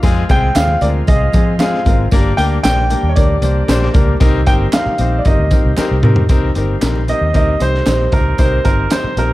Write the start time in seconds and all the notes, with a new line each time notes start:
Already playing: F4
0.03 F2 F3 G#3 C4 F4 G#4, kick, closed hi-hat, tambourine
0.29 C2 G#3 C4 F4 G#4 G5, kick, closed hi-hat, tambourine
0.55 D#2 G#3 C4 F4 G#4 F5, snare, clap, closed hi-hat, tambourine, high conga
0.67 low conga
0.81 D2 G#3 C4 F4 A#4 D5, closed hi-hat, tambourine, low conga
1.07 C2 G#3 C4 F4 G#4 D#5, kick, closed hi-hat, tambourine, muted conga, high conga
1.32 F3 G#3 C4 F4 G#4, kick, closed hi-hat, tambourine, high conga
1.59 G#3 C4 F4 G#4 F5, snare, clap, closed hi-hat, tambourine, muted conga, high conga
1.74 snare
1.86 G#1 G#3 C4 F4 A#4, kick, closed hi-hat, tambourine, muted conga, low conga
2.11 G1 D3 G3 A#3 D4 G4 A#4, kick, closed hi-hat, tambourine, muted conga
2.37 D2 A#3 D4 G4 A#4 G5, closed hi-hat, tambourine
2.63 A#1 A#3 D4 G4 C5 G5, snare, clap, closed hi-hat, tambourine, muted conga, high conga
2.76 low conga
2.90 A#3 D4 G4 A#4, closed hi-hat, tambourine, low conga
3.03 D#2
3.09 C#5
3.16 D2 A#3 D4 G4 A#4 D5, kick, closed hi-hat, tambourine, muted conga, high conga
3.41 C2 A#3 D4 G4 C5, closed hi-hat, tambourine, muted conga, high conga
3.68 A#1 A#3 D4 G4 C5, snare, clap, closed hi-hat, tambourine, high conga
3.82 snare
3.94 C#2 A#3 D4 G4 A#4, kick, closed hi-hat, tambourine, low conga
4.20 C2 D#3 A#3 C4 D#4 G4 A#4, kick, closed hi-hat, tambourine
4.46 G1 C4 D#4 G4 A#4 G5, kick, closed hi-hat, tambourine
4.72 C4 D#4 G4 A#4 F5, snare, clap, closed hi-hat, tambourine, muted conga, high conga
4.86 muted fingered electric bass stroke, low conga
4.98 A#1 C4 D#4 G4 C5, closed hi-hat, tambourine
5.19 D5
5.25 G1 C4 D#4 G4 A#4 D#5, kick, closed hi-hat, tambourine, muted conga, high conga
5.38 D2
5.51 C4 D#4 G4 A#4, kick, closed hi-hat, tambourine, muted conga, high conga
5.65 C2
5.77 C4 D#4 G4 A#4, muted fingered electric bass stroke, snare, clap, tambourine, high conga
5.91 C2
6.03 C3 C4 D#4 G4 A#4, mid tom, muted conga, low conga
6.16 floor tom
6.29 C2 D#3 G3 A#3 C4 D#4 G4 A#4, kick, closed hi-hat, tambourine
6.55 G1 C4 D#4 G4 A#4, closed hi-hat, tambourine, muted conga
6.81 A#1 C4 D#4 G4 A#4, snare, clap, closed hi-hat, tambourine, muted conga, high conga
6.96 low conga
7.08 C4 D#4 G4 A#4 D#5, closed hi-hat, tambourine, muted conga, low conga
7.21 D#2
7.34 D2 C4 D#4 G4 A#4 D#5, kick, closed hi-hat, tambourine, muted conga, high conga
7.60 C2 C4 D#4 G4 C5, closed hi-hat, tambourine, high conga
7.74 snare
7.86 A#1 C4 D#4 G4 C5, snare, clap, closed hi-hat, tambourine, muted conga, high conga
8.12 C#2 C4 D#4 G4 A#4, kick, closed hi-hat, tambourine, muted conga, low conga
8.38 C2 C4 D#4 G4 A#4 C5, kick, closed hi-hat, tambourine, muted conga
8.64 G1 C4 D#4 G4 A#4 C5, kick, closed hi-hat, tambourine, muted conga
8.90 C4 D#4 G4 C5, snare, clap, closed hi-hat, tambourine, muted conga, high conga
9.04 muted fingered electric bass stroke, low conga
9.17 A#1 C4 D#4 G4 A#4 C5, closed hi-hat, tambourine, low conga